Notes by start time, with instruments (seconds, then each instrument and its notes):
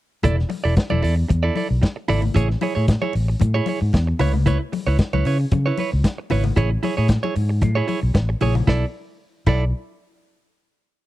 0.23 fingered electric bass E1, clean electric guitar E4 A4 D5, kick, closed hi-hat, low conga
0.37 muted clean electric guitar stroke, snare
0.49 muted clean electric guitar stroke, open hi-hat, muted conga, high conga
0.64 fingered electric bass E1, clean electric guitar E4 A4 D5
0.76 kick, snare, closed hi-hat, muted conga
0.90 fingered electric bass E1, clean electric guitar E4 A4 D5, high conga
1.02 fingered electric bass E2, clean electric guitar E4 A4 D5, open hi-hat, muted conga
1.28 fingered electric bass E2, muted clean electric guitar stroke, kick, closed hi-hat, high conga
1.43 clean electric guitar E4 A4 D5
1.55 clean electric guitar E4 A4 D5, open hi-hat, high conga
1.69 fingered electric bass B1, muted clean electric guitar stroke
1.82 muted clean electric guitar stroke, kick, snare, closed hi-hat, muted conga
1.96 muted clean electric guitar stroke
2.08 fingered electric bass G#1, clean electric guitar E4 A4 D5, open hi-hat, muted conga, low conga
2.22 muted clean electric guitar stroke, low conga
2.34 fingered electric bass A1, clean electric guitar E4 G#4 C#5, kick, closed hi-hat, muted conga, low conga
2.49 muted clean electric guitar stroke, snare
2.61 clean electric guitar E4 G#4 C#5, open hi-hat, muted conga, high conga
2.75 fingered electric bass A2, clean electric guitar E4 G#4 C#5
2.88 muted clean electric guitar stroke, kick, snare, closed hi-hat, muted conga
3.02 clean electric guitar E4 G#4 C#5, high conga
3.13 fingered electric bass A1, open hi-hat, muted conga
3.28 muted clean electric guitar stroke
3.40 fingered electric bass A2, muted clean electric guitar stroke, kick, closed hi-hat, muted conga, high conga
3.54 clean electric guitar E4 G#4 C#5
3.66 clean electric guitar E4 G#4 C#5, open hi-hat, muted conga, high conga
3.81 fingered electric bass G#2, muted clean electric guitar stroke
3.93 fingered electric bass E2, muted clean electric guitar stroke, kick, snare, closed hi-hat, muted conga
4.07 muted clean electric guitar stroke
4.19 fingered electric bass C#2, clean electric guitar E4 B4 C#5, open hi-hat, muted conga, low conga
4.33 muted clean electric guitar stroke, low conga
4.46 clean electric guitar E4 B4 C#5, kick, closed hi-hat, muted conga, low conga
4.59 muted clean electric guitar stroke
4.72 muted clean electric guitar stroke, open hi-hat, muted conga, high conga
4.87 fingered electric bass C#2, clean electric guitar E4 B4 C#5
4.98 muted clean electric guitar stroke, kick, snare, closed hi-hat, muted conga
5.13 fingered electric bass C#2, clean electric guitar E4 B4 C#5, high conga
5.25 fingered electric bass C#3, clean electric guitar E4 B4 C#5, open hi-hat, muted conga
5.41 muted clean electric guitar stroke
5.51 fingered electric bass C#3, muted clean electric guitar stroke, kick, closed hi-hat, muted conga, high conga
5.66 clean electric guitar E4 B4 C#5
5.77 clean electric guitar E4 B4 C#5, open hi-hat, high conga
5.92 fingered electric bass C#2, muted clean electric guitar stroke
6.04 muted clean electric guitar stroke, kick, snare, closed hi-hat, muted conga
6.18 muted clean electric guitar stroke
6.30 fingered electric bass G#1, clean electric guitar E4 B4 C#5, open hi-hat, low conga
6.44 muted clean electric guitar stroke, low conga
6.56 fingered electric bass A1, clean electric guitar E4 G#4 C#5, kick, closed hi-hat, low conga
6.71 muted clean electric guitar stroke
6.83 clean electric guitar E4 G#4 C#5, open hi-hat, muted conga, high conga
6.97 fingered electric bass A2, clean electric guitar E4 G#4 C#5
7.08 kick, snare, closed hi-hat, muted conga
7.23 clean electric guitar E4 G#4 C#5, high conga
7.35 fingered electric bass G#2, open hi-hat, muted conga
7.49 muted clean electric guitar stroke
7.61 fingered electric bass A2, muted clean electric guitar stroke, kick, closed hi-hat, muted conga, high conga
7.75 clean electric guitar E4 G#4 C#5
7.87 clean electric guitar E4 G#4 C#5, open hi-hat, high conga
8.02 fingered electric bass B1, muted clean electric guitar stroke
8.14 fingered electric bass A1, muted clean electric guitar stroke, kick, snare, closed hi-hat
8.29 muted clean electric guitar stroke
8.40 fingered electric bass A#1, clean electric guitar E4 G#4 C#5, open hi-hat, muted conga, low conga
8.55 muted clean electric guitar stroke, low conga
8.67 fingered electric bass B1, clean electric guitar E4 A4 D5, kick, snare, high conga
9.46 fingered electric bass B1, clean electric guitar E4 A4 D5, kick, crash, high conga